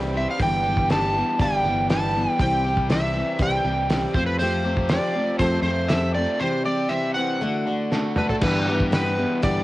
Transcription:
Already playing: fingered electric bass C2, steel-string acoustic guitar E3 G3 C4 G4, overdriven electric guitar E3 G3 C4 G4, electric slide guitar G5
0.16 steel-string acoustic guitar G3 C4 G4, electric slide guitar E5
0.31 electric slide guitar F5
0.39 fingered electric bass G1, steel-string acoustic guitar G2 D3 E3 G3 B3 G4, electric slide guitar G5, kick, open hi-hat
0.67 steel-string acoustic guitar E3 G3 B3 G4
0.77 kick
0.90 steel-string acoustic guitar E3 G3 B3 G4, electric slide guitar A5, snare, open hi-hat
1.13 overdriven electric guitar E3, steel-string acoustic guitar G4
1.18 steel-string acoustic guitar E3 G3 B3
1.40 fingered electric bass G1, steel-string acoustic guitar G2 D3 E3 G3 B3 G4, electric slide guitar G5, kick, open hi-hat
1.64 fingered electric bass G1, overdriven electric guitar E3, steel-string acoustic guitar B3 G4
1.68 steel-string acoustic guitar E3 G3
1.90 steel-string acoustic guitar E3 G3 B3 G4, electric slide guitar A5, snare, open hi-hat
2.16 steel-string acoustic guitar E3 G3 B3 G4
2.39 fingered electric bass C2, steel-string acoustic guitar C3 E3 G3 C4 G4, electric slide guitar G5, kick, open hi-hat
2.65 steel-string acoustic guitar G3 C4 G4
2.77 kick
2.89 steel-string acoustic guitar E3 G3 C4 G4, electric slide guitar E5, snare, open hi-hat
3.14 overdriven electric guitar E3, steel-string acoustic guitar G3 C4 G4
3.39 fingered electric bass C2, steel-string acoustic guitar C3 E3 G3 C4 G4, electric slide guitar G5, kick, open hi-hat
3.64 fingered electric bass C2, overdriven electric guitar E3, steel-string acoustic guitar G3 C4 G4
3.90 steel-string acoustic guitar E3 G3 C4 G4, snare, open hi-hat
4.14 fingered electric bass F2, overdriven electric guitar F3, steel-string acoustic guitar A3 C4 G4, electric slide guitar C5, kick
4.26 electric slide guitar B4
4.39 steel-string acoustic guitar F3 A3 C4 G4, electric slide guitar C5, open hi-hat
4.64 steel-string acoustic guitar A3 C4 G4
4.77 kick
4.89 steel-string acoustic guitar F3 A3 C4 G4, electric slide guitar D5, snare, open hi-hat
5.14 overdriven electric guitar F3, steel-string acoustic guitar A3 C4 G4
5.39 fingered electric bass F2, steel-string acoustic guitar F3 A3 C4 G4, electric slide guitar C5, kick, open hi-hat
5.62 fingered electric bass F2, overdriven electric guitar F3, steel-string acoustic guitar C4 G4, electric slide guitar C5
5.66 steel-string acoustic guitar A3
5.88 steel-string acoustic guitar F3 A3 C4 G4, electric slide guitar E5, snare, open hi-hat
6.15 steel-string acoustic guitar A3 C4 G4, electric slide guitar D5
6.40 steel-string acoustic guitar C3 E3 G3 C4 G4, electric slide guitar C5
6.64 steel-string acoustic guitar G3 C4 G4, electric slide guitar D5
6.88 steel-string acoustic guitar E3 G3 C4 G4, electric slide guitar E5
7.14 overdriven electric guitar E3, steel-string acoustic guitar G3 C4 G4, electric slide guitar F#5
7.41 steel-string acoustic guitar D3 A3 D4 F#4
7.67 overdriven electric guitar D3, steel-string acoustic guitar A3 D4 F#4
7.91 steel-string acoustic guitar D3 A3 D4 F#4, snare
8.16 steel-string acoustic guitar A3 D4 F#4, electric slide guitar B4, mid tom
8.29 electric slide guitar A4, floor tom
8.41 fingered electric bass G2, steel-string acoustic guitar G2 D3 E3 G3 B3 G4, electric slide guitar B4, kick, crash
8.68 steel-string acoustic guitar E3 G3 B3 G4
8.80 kick
8.91 steel-string acoustic guitar E3 G3 B3 G4, electric slide guitar B4, snare, open hi-hat
9.18 steel-string acoustic guitar E3 G3 B3 G4
9.42 steel-string acoustic guitar G2 D3 E3 G3 B3 G4, fingered electric bass G2, electric slide guitar D5, kick, open hi-hat

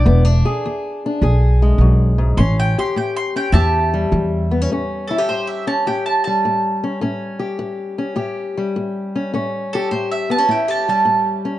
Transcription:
Already playing: mandolin D5
0.06 upright bass E1, steel-string acoustic guitar E2 B3
0.25 steel-string acoustic guitar D4
0.45 steel-string acoustic guitar G#4
0.66 steel-string acoustic guitar E2
1.06 steel-string acoustic guitar D4
1.22 upright bass B1, steel-string acoustic guitar E2 G#4
1.62 steel-string acoustic guitar G#3
1.78 upright bass B1, steel-string acoustic guitar F#2
2.18 steel-string acoustic guitar G#2
2.37 upright bass A1, steel-string acoustic guitar A2 C#4, mandolin C6
2.60 mandolin G5
2.78 steel-string acoustic guitar G4, mandolin C6
2.96 steel-string acoustic guitar A2, mandolin G5
3.16 mandolin C6
3.36 steel-string acoustic guitar C#4, mandolin G5
3.52 upright bass E2, steel-string acoustic guitar A2 G4, mandolin E5 A5
3.94 steel-string acoustic guitar G3
4.12 upright bass E2, steel-string acoustic guitar A2
4.51 steel-string acoustic guitar B3
4.62 steel-string acoustic guitar C#4
4.72 steel-string acoustic guitar A2 C#4
5.08 steel-string acoustic guitar E4, mandolin A4
5.18 steel-string acoustic guitar G4
5.29 steel-string acoustic guitar A2, mandolin C5
5.47 mandolin E5
5.67 steel-string acoustic guitar C#4, mandolin A5
5.87 steel-string acoustic guitar A2 G4, mandolin G5
6.06 mandolin A5
6.24 steel-string acoustic guitar G3, mandolin A5
6.45 steel-string acoustic guitar A2
6.84 steel-string acoustic guitar C#4
7.01 steel-string acoustic guitar A2 C#4
7.39 steel-string acoustic guitar G4
7.59 steel-string acoustic guitar A2
7.98 steel-string acoustic guitar C#4
8.16 steel-string acoustic guitar A2 G4
8.57 steel-string acoustic guitar G3
8.76 steel-string acoustic guitar A2
9.16 steel-string acoustic guitar C#4
9.34 steel-string acoustic guitar A2 C#4
9.73 steel-string acoustic guitar G4, mandolin A4
9.91 steel-string acoustic guitar A2, mandolin C5
10.11 mandolin E5
10.30 steel-string acoustic guitar B3, mandolin A5
10.38 steel-string acoustic guitar C#4
10.49 steel-string acoustic guitar A2 E4, mandolin G5
10.68 steel-string acoustic guitar G4, mandolin A5
10.88 steel-string acoustic guitar G3, mandolin A5
11.05 steel-string acoustic guitar A2
11.45 steel-string acoustic guitar C#4

